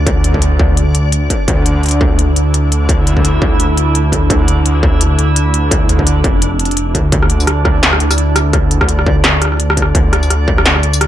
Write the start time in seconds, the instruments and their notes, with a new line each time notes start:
Already playing: detuned saw bass D2, synth texture D4 D5
0.07 kick, closed hi-hat
0.24 detuned saw bass D2, closed hi-hat
0.34 kick
0.42 closed hi-hat
0.59 detuned saw bass D2, kick
0.77 closed hi-hat
0.95 closed hi-hat
1.12 closed hi-hat
1.30 kick, closed hi-hat
1.48 detuned saw bass D2, synth texture E4, kick, closed hi-hat
1.66 closed hi-hat
1.83 detuned saw bass D2, closed hi-hat
1.86 closed hi-hat
1.89 closed hi-hat
1.91 closed hi-hat
2.01 kick
2.19 closed hi-hat
2.36 detuned saw bass D2, closed hi-hat
2.54 closed hi-hat
2.72 closed hi-hat
2.89 kick, closed hi-hat
3.07 detuned saw bass D2, closed hi-hat
3.17 kick
3.25 closed hi-hat
3.42 detuned saw bass D2, kick
3.60 closed hi-hat
3.77 closed hi-hat
3.95 closed hi-hat
4.12 kick, closed hi-hat
4.30 detuned saw bass D2, kick, closed hi-hat
4.48 closed hi-hat
4.65 detuned saw bass D2, closed hi-hat
4.83 kick
5.01 closed hi-hat
5.18 detuned saw bass D2, closed hi-hat
5.36 closed hi-hat
5.54 closed hi-hat
5.71 kick, closed hi-hat
5.89 detuned saw bass D2, closed hi-hat
5.99 kick
6.07 closed hi-hat
6.24 detuned saw bass F1, kick, closed hi-hat
6.42 closed hi-hat
6.59 closed hi-hat
6.65 closed hi-hat
6.71 closed hi-hat
6.77 closed hi-hat
6.95 detuned saw bass D2, kick, closed hi-hat
7.12 detuned saw bass D2, synth texture D4 D5, kick, closed hi-hat
7.23 cross-stick
7.30 closed hi-hat
7.40 tambourine
7.47 detuned saw bass D2, cross-stick, closed hi-hat
7.65 kick, cross-stick
7.83 snare, closed hi-hat
7.93 cross-stick
8.00 detuned saw bass D2, closed hi-hat
8.11 cross-stick, tambourine
8.18 closed hi-hat
8.36 cross-stick, closed hi-hat, tambourine
8.53 kick, cross-stick, closed hi-hat
8.71 detuned saw bass D2, closed hi-hat
8.81 kick, cross-stick
8.89 closed hi-hat
8.99 cross-stick
9.06 detuned saw bass D2, kick
9.24 cross-stick, snare, closed hi-hat
9.42 cross-stick, closed hi-hat
9.45 cross-stick
9.48 cross-stick
9.52 cross-stick
9.54 cross-stick
9.57 cross-stick, closed hi-hat
9.70 cross-stick
9.77 kick, closed hi-hat
9.82 cross-stick
9.95 detuned saw bass D2, kick, closed hi-hat
10.13 cross-stick, closed hi-hat
10.23 tambourine
10.30 detuned saw bass D2, cross-stick, closed hi-hat
10.48 kick
10.58 cross-stick
10.66 snare, closed hi-hat
10.76 cross-stick
10.83 detuned saw bass D2, closed hi-hat
10.93 tambourine
11.01 cross-stick, closed hi-hat